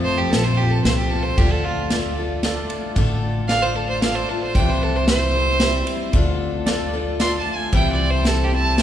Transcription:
Already playing: F2 F3 A3 C4 F4 A4
0.05 C5
0.18 G4
0.30 A#1 A3 C4 F4 A4 C5, snare, ride
0.44 C5
0.57 C4 F4 G4 A4
0.70 A4
0.84 C2 A3 C4 F4 A4 C5, snare, ride
0.97 G4
1.09 A4
1.13 C4 F4
1.22 C5
1.37 D2 D3 A3 D4 F4 G4 A4, kick, ride
1.51 A4
1.64 F4
1.90 A3 D4 F4 A4 D5, snare, ride
2.17 D4 F4 A4
2.43 A3 D4 F4 A4 D5, snare, ride
2.70 ride
2.96 A1 D3 A3 D4 F4 A4, kick, ride
3.48 A3 D4 F4 A4 D5 F5, snare, ride
3.52 A4
3.62 C5
3.75 A4
3.89 C5
4.02 A3 D4 F4 A4 D5 F5, snare, ride
4.15 C5
4.29 D4 F4 A4
4.43 C5
4.55 C2 C3 E3 G3 C4 E4 G5, kick, ride
4.59 C5
4.69 C5
4.83 A4
4.96 C5
5.08 G3 C4 E4 G4 C5, snare, ride
5.35 G3 C4 E4 C5
5.60 G3 C4 E4 G4 C5, snare, ride
5.87 ride
6.13 D2 D3 A3 D4 F4 A4, kick, ride
6.66 A3 D4 F4 A4 D5, snare, ride
6.93 D4 F4 A4
7.19 A3 D4 F4 A4 D5 C6, snare, ride
7.39 A5
7.56 G#5
7.72 C2 C3 E3 G3 C4 E4 C5 G5, kick, ride
7.92 D5
8.10 C5
8.24 G3 C4 E4 G4 A4 C5, snare, ride
8.44 G4
8.51 G3 C4 E4 C5 A5
8.77 G3 C4 E4 G4 C5, snare, ride

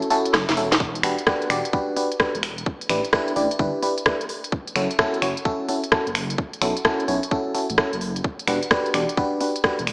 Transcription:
0.02 closed hi-hat
0.10 C#4 E4 F#4 A4, open hi-hat
0.25 closed hi-hat
0.34 F#1, cross-stick, snare
0.49 F#1, snare, closed hi-hat
0.57 E1 C#4 E4 F#4 A4, open hi-hat
0.72 snare, closed hi-hat
0.80 kick
0.95 closed hi-hat
1.03 E1 D4 F#4 G4 B4, finger snap, open hi-hat
1.18 closed hi-hat
1.27 D4 F#4 G4 B4, kick, cross-stick
1.42 closed hi-hat
1.50 E1 D4 F#4 G4 D5, finger snap, open hi-hat
1.65 closed hi-hat
1.73 D4 F#4 G4 B4, kick
1.96 D4 F#4 G4 B4, open hi-hat
2.12 closed hi-hat
2.20 D4 F#4 G4 B4, kick, cross-stick
2.35 E1, closed hi-hat
2.43 finger snap, open hi-hat
2.58 closed hi-hat
2.66 kick
2.81 closed hi-hat
2.89 A1 D4 E4 G4 B4, finger snap, open hi-hat
3.05 closed hi-hat
3.13 D4 E4 G4 B4, kick, cross-stick
3.28 closed hi-hat
3.36 A1 D4 E4 G4 D5, open hi-hat
3.51 closed hi-hat
3.59 G1 D4 E4 G4 B4, kick
3.82 D4 E4 G4 B4, open hi-hat
3.98 closed hi-hat
4.06 D4 E4 G4 B4, kick, cross-stick
4.21 closed hi-hat
4.29 open hi-hat
4.44 closed hi-hat
4.52 kick
4.67 closed hi-hat
4.75 F#1 C#4 E4 F#4 A4, finger snap, open hi-hat
4.91 closed hi-hat
4.99 C#4 E4 F#4 A4, kick, cross-stick
5.14 closed hi-hat
5.22 F#1 C#4 E4 F#4 C#5, finger snap, open hi-hat
5.37 closed hi-hat
5.45 C#4 E4 F#4 A4, kick
5.69 C#4 E4 F#4 A4, open hi-hat
5.84 closed hi-hat
5.92 C#4 E4 F#4 A4, kick, cross-stick
6.07 F#1, closed hi-hat
6.15 finger snap, open hi-hat
6.30 closed hi-hat
6.38 kick
6.53 closed hi-hat
6.61 B1 C#4 E4 F#4 A4, finger snap, open hi-hat
6.77 closed hi-hat
6.85 C#4 E4 F#4 A4, kick, cross-stick
7.00 closed hi-hat
7.08 B1 C#4 E4 F#4 C#5, open hi-hat
7.23 closed hi-hat
7.31 C#4 E4 F#4 A4, kick
7.55 C#4 E4 F#4 A4, open hi-hat
7.70 A1, closed hi-hat
7.78 C#4 E4 F#4 A4, kick, cross-stick
7.93 F#1, closed hi-hat
8.01 open hi-hat
8.16 closed hi-hat
8.24 kick
8.39 closed hi-hat
8.48 E1 D4 F#4 G4 B4, finger snap, open hi-hat
8.63 closed hi-hat
8.71 D4 F#4 G4 B4, kick, cross-stick
8.86 closed hi-hat
8.94 E1 D4 F#4 G4 D5, finger snap, open hi-hat
9.09 closed hi-hat
9.17 D4 F#4 G4 B4, kick
9.41 D4 F#4 G4 B4, open hi-hat
9.56 closed hi-hat
9.64 D4 F#4 G4 B4, kick, cross-stick
9.79 E1, closed hi-hat
9.87 finger snap, open hi-hat

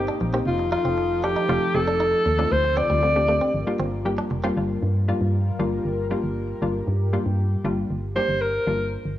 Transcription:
Already playing: G1 A#3 C4 D#4 G4
0.08 D4
0.21 A#1, muted clean electric guitar stroke
0.33 A#3 C4 D#4 G4
0.46 F1 F3 F4 A4
0.59 muted clean electric guitar stroke
0.72 D#4 F4
0.85 F1 C4
0.98 muted clean electric guitar stroke
1.24 D4 G4
1.36 D#4
1.49 F1 A3 C4 D#4 F4
1.75 F1 A3 C4 D#4 G4 A4, muted clean electric guitar stroke
1.88 D4
2.00 D#4
2.26 D#2, muted clean electric guitar stroke
2.39 A3 C4 D4 D#4 F4
2.51 D2 D3 C4 F4 C5
2.64 muted clean electric guitar stroke
2.77 C4 D5
2.90 D2 G3
3.03 A3 C4 D4 F4, muted clean electric guitar stroke
3.16 A3 C4 D4 G4
3.28 A3 C4 D4 G4
3.41 C4
3.54 G1 G3 F4 A#4
3.67 G3 A#3 D4 F4
3.80 G1 C4
4.06 G3 A#3 D4 G4
4.19 D4
4.31 F1, muted clean electric guitar stroke
4.44 G3 A#3 C4 D4 F4
4.57 G1 G3 A#3 D4 F4 A#4
4.83 G2
5.08 G3 A#3 D4 F4
5.21 G2
5.59 G1 G3 A#3 D4 F4
5.85 G1
6.11 G3 A#3 D4 F4
6.23 G1
6.62 G1 G3 A#3 D4 F4 G4
6.88 G2
7.13 G3 A#3 D4 F4
7.26 G2
7.64 G1 G3 A#3 D4 F4
7.90 G1
8.16 G3 A#3 D4 G4 C5
8.29 G1
8.41 A#4
8.67 G1 G3 A#3 D4 F4
9.06 G1

